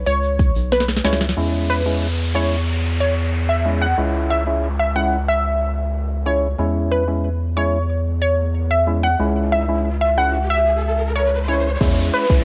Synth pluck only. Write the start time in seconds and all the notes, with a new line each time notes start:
0.07 C#5
0.72 B4
1.05 C#5
1.70 B4
2.35 C#5
3.00 C#5
3.49 E5
3.82 F#5
4.30 E5
4.79 E5
4.96 F#5
5.29 E5
6.26 C#5
6.91 B4
7.57 C#5
8.22 C#5
8.71 E5
9.03 F#5
9.52 E5
10.01 E5
10.18 F#5
10.50 E5
11.16 C#5
11.48 C#5
12.13 B4